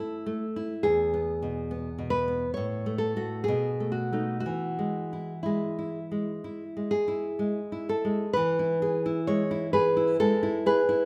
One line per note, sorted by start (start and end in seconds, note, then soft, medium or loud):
0.00 0.44 E4 soft
0.00 0.15 A4 soft
0.26 0.73 A3 soft
0.56 0.85 E4 soft
0.83 2.53 E2 soft
0.83 2.09 G#4 medium
1.14 1.60 B3 soft
1.42 1.88 B2 soft
1.71 2.16 B3 soft
1.98 2.45 B2 soft
2.10 2.52 B4 medium
2.28 2.57 B3 soft
2.54 3.46 A2 soft
2.54 2.97 C#5 medium
2.86 3.15 A3 soft
2.98 3.43 A4 medium
3.16 3.45 A3 soft
3.16 3.45 F#4 soft
3.44 3.91 G#4 medium
3.48 4.42 B2 medium
3.80 4.11 A3 soft
3.92 4.39 F#4 medium
4.12 4.42 A3 soft
4.12 4.42 D#4 soft
4.40 5.39 F#4 medium
4.46 6.39 E3 soft
4.79 5.32 G#3 soft
5.13 5.66 E4 soft
5.43 5.98 G#3 soft
5.43 6.85 E4 soft
5.79 6.30 E4 soft
6.11 6.62 G#3 soft
6.44 6.94 E4 soft
6.77 7.27 G#3 soft
6.91 7.84 G#4 medium
7.08 7.59 E4 soft
7.39 7.91 G#3 soft
7.72 8.24 E4 soft
7.89 8.33 A4 soft
8.05 8.36 G#3 soft
8.33 10.18 E3 medium
8.33 9.23 B4 medium
8.59 8.82 E4 soft
8.82 9.19 G#4 soft
9.06 9.42 E4 soft
9.27 9.65 G#3 medium
9.27 9.71 C#5 medium
9.51 9.74 E4 soft
9.73 10.12 G#4 soft
9.73 10.17 B4 medium
9.97 10.34 E4 medium
10.20 10.58 G#3 medium
10.20 10.63 A4 medium
10.43 10.80 E4 medium
10.66 11.03 G#4 medium
10.66 11.05 B4 medium
10.89 11.05 E4 medium